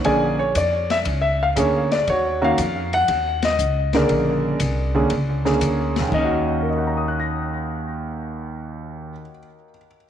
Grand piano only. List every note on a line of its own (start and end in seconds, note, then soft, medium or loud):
0.05 0.36 D3 medium
0.05 0.36 A#3 medium
0.05 0.36 C#4 medium
0.05 0.37 G#4 medium
0.05 0.56 D5 medium
0.05 0.37 G#5 medium
0.39 0.56 C#5 medium
0.57 0.91 D5 medium
0.91 0.97 E5 medium
1.21 1.42 E5 medium
1.43 1.48 F5 medium
1.56 1.88 D3 medium
1.56 1.88 A#3 medium
1.56 1.88 C#4 medium
1.56 1.88 G#4 medium
1.56 1.90 C#5 medium
1.92 2.09 D5 medium
2.10 2.41 F#4 medium
2.10 2.40 C#5 medium
2.42 2.56 D#3 medium
2.42 2.56 A#3 medium
2.42 2.56 C#4 medium
2.42 2.56 F#4 medium
2.42 2.90 F5 medium
2.94 3.46 F#5 loud
3.45 3.91 D#5 medium
3.94 4.57 C#3 medium
3.94 4.57 D3 medium
3.94 4.57 A#3 medium
3.94 4.94 G#4 soft
3.94 4.58 A#4 medium
3.94 5.58 D5 medium
4.94 5.09 D3 medium
4.94 5.09 A#3 medium
4.94 5.09 C#4 medium
4.94 5.10 G#4 medium
5.45 6.09 D3 medium
5.45 6.08 A#3 medium
5.45 6.09 C#4 medium
5.45 6.09 G#4 medium
6.00 9.12 D#2 medium
6.08 9.20 D#3 medium
6.14 9.29 C#4 medium
6.14 6.68 D#5 medium
6.25 9.37 F#4 medium
6.62 9.70 A#4 soft
6.70 9.78 D#5 soft
6.78 9.86 F#5 soft
6.87 9.95 A#5 soft
6.97 10.05 D#6 soft
7.08 10.10 F#6 soft
7.20 10.10 A#6 soft